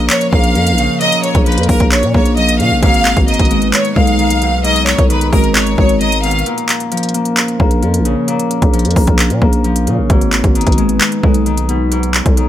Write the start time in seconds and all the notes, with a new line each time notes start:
Already playing: A#2 F3 A#3 C#4 A#4
0.10 C#5, clap, closed hi-hat
0.21 closed hi-hat
0.33 A#1 A#3 F5, kick
0.44 closed hi-hat
0.55 F2 F3, closed hi-hat
0.67 closed hi-hat
0.72 A#1
0.78 C#3, closed hi-hat
1.01 A#2 D#5, closed hi-hat
1.12 closed hi-hat
1.24 C#5, closed hi-hat
1.35 A#1, kick, closed hi-hat
1.46 F3 B4, closed hi-hat
1.52 closed hi-hat
1.57 F2, closed hi-hat
1.63 closed hi-hat
1.69 A#1 A#3 A#4, kick, open hi-hat
1.80 A#1, kick, closed hi-hat
1.92 C#5, clap, closed hi-hat
2.03 A#2, closed hi-hat
2.14 A#1 A#3 C#5, kick
2.25 closed hi-hat
2.37 F3 D#5, closed hi-hat
2.49 closed hi-hat
2.60 A#2 C#3 F5, closed hi-hat
2.71 A#1
2.82 G#1 G#2 G#3 B3 D#4 B4 F5, kick, closed hi-hat
2.94 closed hi-hat
3.05 clap, closed hi-hat
3.17 G#1, kick, closed hi-hat
3.28 D#3 D#5, closed hi-hat
3.34 closed hi-hat
3.39 G#1, kick, closed hi-hat
3.45 closed hi-hat
3.50 G#3, closed hi-hat
3.62 closed hi-hat
3.73 C#5, clap, closed hi-hat
3.85 closed hi-hat
3.96 B1 G#3 F5, kick
4.07 closed hi-hat
4.19 D#3, closed hi-hat
4.30 closed hi-hat
4.42 B2, closed hi-hat
4.64 G#2 A#4 D#5, closed hi-hat
4.76 closed hi-hat
4.87 C#5, clap, closed hi-hat
4.98 B1, kick, closed hi-hat
5.10 D#3 B4, closed hi-hat
5.21 closed hi-hat
5.32 G#1 G#3 A#4, kick, open hi-hat
5.44 closed hi-hat
5.55 C#5, clap, closed hi-hat
5.67 closed hi-hat
5.78 G#1 G#3 C#5, kick
5.89 closed hi-hat
6.01 D#3 D#5, closed hi-hat
6.12 closed hi-hat
6.23 B2 F5, closed hi-hat
6.31 closed hi-hat
6.39 closed hi-hat
6.46 A#2 F3 A#3 C#4 A#4, closed hi-hat
6.58 closed hi-hat
6.69 clap, closed hi-hat
6.80 closed hi-hat
6.92 F3, closed hi-hat
6.97 closed hi-hat
7.03 closed hi-hat
7.09 closed hi-hat
7.14 A#3, closed hi-hat
7.25 closed hi-hat
7.37 clap, closed hi-hat
7.48 closed hi-hat
7.60 A#1 A#3, kick
7.71 closed hi-hat
7.82 F2 F3, closed hi-hat
7.94 closed hi-hat
8.00 A#1
8.05 C#3, closed hi-hat
8.28 A#2, closed hi-hat
8.39 closed hi-hat
8.51 closed hi-hat
8.62 A#1, kick, closed hi-hat
8.73 F3, closed hi-hat
8.79 closed hi-hat
8.85 F2, closed hi-hat
8.91 closed hi-hat
8.96 A#1 A#3, kick, open hi-hat
9.07 A#1, kick, closed hi-hat
9.19 clap, closed hi-hat
9.30 A#2, closed hi-hat
9.42 A#1 A#3, kick
9.53 closed hi-hat
9.64 F3, closed hi-hat
9.76 closed hi-hat
9.87 A#2 C#3, closed hi-hat
9.98 A#1
10.10 G#1 G#2 G#3 B3 D#4 B4, kick, closed hi-hat
10.21 closed hi-hat
10.33 clap, closed hi-hat
10.44 G#1, kick, closed hi-hat
10.55 D#3, closed hi-hat
10.61 closed hi-hat
10.67 G#1, kick, closed hi-hat
10.72 closed hi-hat
10.78 G#3, closed hi-hat
10.89 closed hi-hat
11.01 clap, closed hi-hat
11.12 closed hi-hat
11.23 B1 G#3, kick
11.34 closed hi-hat
11.46 D#3, closed hi-hat
11.58 closed hi-hat
11.69 B2, closed hi-hat
11.92 G#2 C#5, closed hi-hat
12.03 closed hi-hat
12.14 clap, closed hi-hat
12.26 B1, kick, closed hi-hat
12.37 D#3, closed hi-hat